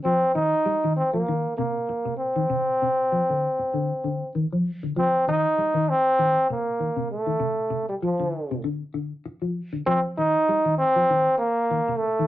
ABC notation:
X:1
M:4/4
L:1/16
Q:"Swing 16ths" 1/4=98
K:Cdor
V:1 name="Trombone"
C2 E4 C B,3 B,4 C2- | C12 z4 | C2 E4 C4 B,4 A,2- | A,3 G, F,4 z8 |
C2 E4 C4 B,4 A,2 |]
V:2 name="Clean electric guitar" clef=bass
F,2 E,2 G, E,2 F, E,2 C,2 z C,2 E, | C,2 C,2 F, D,2 z D,2 D,2 E, F,2 D, | F,2 E,2 G, E,2 z E,2 C,2 E, C,2 E, | C,2 C,2 F, D,2 C, D,2 D,2 z F,2 D, |
F,2 E,2 G, E,2 F, E,2 z2 E, C,2 E, |]